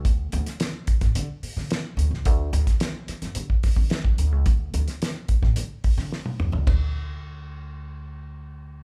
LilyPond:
<<
  \new Staff \with { instrumentName = "Upright bass" } { \clef bass \time 4/4 \key d \major \tempo 4 = 109 d,8 d,16 r4 a,16 d16 r8 d16 r8 d,16 cis,16 | d,8 d,16 r4 fis,16 d16 r8 d16 r8 d,16 cis,16 | d,8 d,16 r4 a,16 d16 r8 d16 r8 d,16 cis,16 | d,1 | }
  \new DrumStaff \with { instrumentName = "Drums" } \drummode { \time 4/4 <hh bd>8 hh16 <hh sn>16 <hh sn>8 <hh bd>16 <hh bd sn>16 hh8 hho16 sn16 <hh sn>8 hh16 sn16 | <hh bd>8 hh16 <hh bd sn>16 <hh sn>8 <hh sn>16 <hh sn>16 hh16 bd16 <hho bd sn>16 bd16 <hh sn>16 bd16 hh8 | <hh bd>8 hh16 <hh sn>16 <hh sn>8 <hh bd>16 <bd sn>16 hh8 <hho bd>16 sn16 sn16 tommh16 toml16 tomfh16 | <bd rb tomfh>4 r4 r4 r4 | }
>>